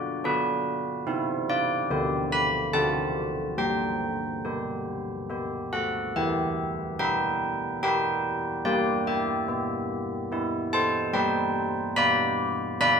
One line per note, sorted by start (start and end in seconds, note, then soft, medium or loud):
0.00 0.21 D4 soft
0.00 0.21 F#4 soft
0.00 0.22 D5 medium
0.24 1.03 D4 soft
0.24 1.03 F#4 soft
0.24 1.04 B4 medium
1.07 1.87 C4 medium
1.07 1.86 E4 soft
1.49 2.29 D5 medium
1.90 2.72 D3 medium
1.90 2.70 B3 soft
1.90 2.70 G4 soft
2.32 2.73 B5 medium
2.73 3.56 D3 medium
2.73 3.55 C4 soft
2.73 3.55 F#4 soft
2.73 3.55 A5 medium
3.58 4.42 G3 soft
3.58 5.26 G5 medium
4.45 5.27 B3 soft
4.45 5.27 G4 soft
5.30 6.12 B3 soft
5.30 6.12 G4 soft
5.73 6.13 A4 soft
5.73 6.14 F#5 medium
6.16 8.63 E3 medium
6.16 6.97 G4 soft
6.16 6.97 E5 medium
6.99 7.81 B3 soft
6.99 7.80 B4 medium
6.99 7.80 G5 medium
7.83 8.62 B3 soft
7.83 8.63 G4 soft
7.83 8.63 B4 medium
7.83 8.63 G5 medium
8.65 11.11 G3 medium
8.65 9.05 G4 medium
8.65 9.06 D5 medium
9.07 10.70 G4 soft
9.07 10.70 E5 medium
9.48 10.30 B3 soft
10.32 11.11 B3 soft
10.32 11.11 E4 soft
10.73 11.13 C5 medium
10.73 11.13 A5 medium
11.14 13.00 G3 medium
11.14 11.93 B4 medium
11.14 11.93 G5 medium
11.96 12.79 B3 soft
11.96 12.76 D5 medium
11.96 12.76 B5 medium
12.80 13.00 B3 soft
12.80 13.00 D4 medium
12.80 13.00 D5 medium
12.80 13.00 B5 medium